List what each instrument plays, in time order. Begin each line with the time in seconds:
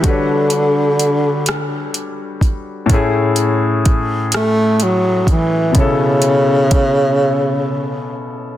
0.01 grand piano G3 D4 F#4, kick, closed hi-hat
0.06 tenor saxophone D3, grand piano A4 B4 C#5
0.50 closed hi-hat
0.99 closed hi-hat
1.46 cross-stick, closed hi-hat
1.94 closed hi-hat
2.41 kick, closed hi-hat
2.86 grand piano A2 A3, kick, closed hi-hat
2.90 grand piano C#4 E4
2.94 grand piano G#4
3.36 closed hi-hat
3.85 kick, closed hi-hat
4.32 tenor saxophone A3, cross-stick, closed hi-hat
4.80 tenor saxophone F#3, closed hi-hat
5.27 kick, closed hi-hat
5.31 tenor saxophone E3
5.72 grand piano B2 B3, kick, closed hi-hat
5.76 tenor saxophone C#3, grand piano C#4 E4 A4
6.22 closed hi-hat
6.71 kick, closed hi-hat